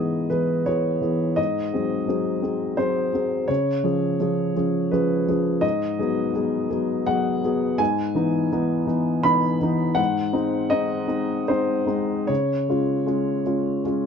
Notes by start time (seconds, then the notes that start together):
Already playing: G#2 E3 B3 G#4 D#5
0.30 E3 B3 G#4 B4
0.66 E3 B3 G#4 C#5
1.01 E3 B3 G#4
1.36 G#2 D#5
1.73 F#3 C4 G#4
2.07 F#3 C4 G#4
2.42 F#3 C4 G#4
2.77 F#3 C4 G#4 C5
3.13 F#3 C4 G#4
3.48 C#3 C#5
3.84 F3 C#4 G#4
4.20 F3 C#4 G#4
4.56 F3 C#4 G#4
4.91 F3 C#4 G#4 B4
5.28 F3 C#4 G#4
5.61 G#2 D#5
5.99 F#3 B3 G#4
6.33 F#3 B3 G#4
6.70 F#3 B3 G#4
7.07 F#3 B3 G#4 F#5
7.44 F#3 B3 G#4
7.78 G#2 G#5
8.15 E3 B3 D#4
8.52 E3 B3 D#4
8.87 E3 B3 D#4
9.23 E3 B3 D#4 B5
9.61 E3 B3 D#4
9.95 G#2 F#5
10.33 G#3 C4 D#4
10.70 G#3 C4 D#4 D#5
11.07 G#3 C4 D#4
11.48 G#3 C4 D#4 C5
11.86 G#3 C4 D#4
12.27 C#3 C#5
12.68 G#3 C#4 F4
13.06 G#3 C#4 F4
13.45 G#3 C#4 F4
13.84 G#3 C#4 F4